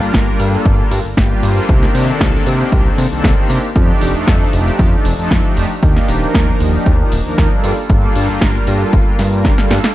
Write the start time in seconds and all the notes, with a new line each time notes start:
0.01 G1 G3 A#3 D4 F4 A#4, shaker
0.14 G1, kick, snare, shaker
0.39 G2 G3 A#3 D4 F4 A4, open hi-hat, shaker
0.54 shaker
0.66 G1, kick, shaker
0.78 G3 A#3 D4 F4 A#4
0.91 G2, open hi-hat, shaker
1.05 G1, shaker
1.17 G1 G3 A#3 D4 F4 G4, kick, snare, shaker
1.42 G2 G3 A#3 D4 F4 C5, open hi-hat, shaker
1.56 G3 A#3 D4 F4 A4, shaker
1.68 C2 D#3 A#3 C4 D4 G4, kick, shaker
1.83 snare
1.95 C3, open hi-hat, shaker
2.07 D#3 A#3 C4 D4 A4, shaker
2.21 C2, kick, snare, shaker
2.46 C3 D#3 A#3 C4 D4 G4, open hi-hat, shaker
2.60 shaker
2.72 C2, kick, shaker
2.85 D#3 A#3 C4 D4 A4
2.98 C3, open hi-hat, shaker
3.11 C2 D#3 A#3 C4 D4 A4, shaker
3.24 C2, kick, snare, shaker
3.36 D#3 A#3 C4 D4 G4
3.50 C3, open hi-hat, shaker
3.64 shaker
3.75 F2 F3 A3 D4 D#4 G4, kick, shaker
4.01 F1, open hi-hat, shaker
4.14 F2 F3 A3 D4 D#4 A4, shaker
4.27 F2, kick, snare, shaker
4.53 F1 F3 A3 D4 D#4 G4, open hi-hat, shaker
4.67 shaker
4.79 F2, kick, shaker
4.92 F3 A3 D4 D#4 A4
5.05 F1, open hi-hat, shaker
5.18 F2 F3 A3 D4 D#4 A4, shaker
5.31 F2, kick, snare, shaker
5.44 F3 A3 D4 D#4 G4
5.57 F1, open hi-hat, shaker
5.71 shaker
5.82 D#2 F3 A#3 D4 D#4 G4, kick, shaker
5.96 snare
6.08 D#1, open hi-hat, shaker
6.21 F3 A#3 D4 D#4 A#4, shaker
6.34 D#2, kick, snare, shaker
6.60 D#1 F3 A#3 D4 D#4 G4, open hi-hat, shaker
6.74 shaker
6.86 D#2, kick, shaker
6.99 F3 A#3 D4 D#4 A#4
7.12 D#1, open hi-hat, shaker
7.25 D#2 F3 A#3 D4 D#4 A#4, shaker
7.38 D#2, kick, snare, shaker
7.51 G3 A#3 D4 F4 A4
7.64 G2, open hi-hat, shaker
7.78 shaker
7.89 G1 G3 A#3 D4 F4 A4, kick, shaker
8.16 G2, open hi-hat, shaker
8.28 G1 G3 A#3 D4 F4 A#4, shaker
8.41 G1, kick, snare, shaker
8.67 G2 G3 A#3 D4 F4 A4, open hi-hat, shaker
8.81 shaker
8.93 G1, kick, shaker
9.06 G3 A#3 D4 F4 A#4
9.19 G2, snare, open hi-hat, shaker
9.32 G3 A#3 D4 F4 A#4, shaker
9.45 G1, kick, snare, shaker
9.58 G3 A#3 D4 F4 A4, snare
9.71 G2, snare, open hi-hat, shaker
9.84 snare, shaker